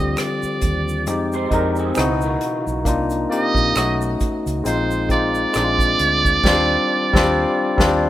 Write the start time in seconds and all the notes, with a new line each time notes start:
Already playing: D2 D3 F3 G3 C4 F4 G4 D#5
0.17 D5, finger snap, cross-stick, closed hi-hat, shaker
0.43 muted fingered electric bass stroke, shaker
0.61 D#2, kick, closed hi-hat, shaker
0.88 shaker
1.06 F2 F3 G#3 C4 D#4 G4, closed hi-hat, shaker
1.10 G4
1.32 D#4 C5, shaker
1.50 F2 G#3 C4 D4 D#4 A#4, kick, closed hi-hat
1.54 A#4
1.76 C4 G#4, shaker
1.95 C#2 B2 C#3 E3 D#4 E4 F#4, finger snap, cross-stick, closed hi-hat, shaker
2.00 F#4
2.21 A#3 F#4, shaker
2.41 closed hi-hat
2.67 B1, shaker
2.85 C2 C3 A#3 C4 D4 D#4 F4, kick, closed hi-hat, shaker
2.89 F4
3.10 closed hi-hat, shaker
3.29 A#3 C4 D#4 G4 D#5, closed hi-hat
3.55 A#1, kick, shaker
3.74 B1 A3 B3 C#4 D#4 F#4, finger snap, cross-stick, closed hi-hat, shaker
4.01 shaker
4.20 muted fingered electric bass stroke, kick, closed hi-hat, shaker
4.46 C#2, closed hi-hat, shaker
4.63 A#1 G#3 A#3 C4 D#4 C5, closed hi-hat, shaker
4.68 F4
4.91 shaker
5.09 G#3 C4 D#4 F4 D5, kick, closed hi-hat
5.35 shaker
5.53 A#1 G#3 C4 D4, finger snap, cross-stick, closed hi-hat, shaker
5.57 D#4
5.64 F4
5.79 kick, shaker
5.99 D2, closed hi-hat
6.25 kick, shaker
6.43 D#2 D#3 G3 C4 D4, kick, snare, crash
6.48 F4
7.13 D#2 G3 C4 D4, kick, snare
7.17 F4
7.77 D#2 G3 C4 D4, kick, snare
7.81 F4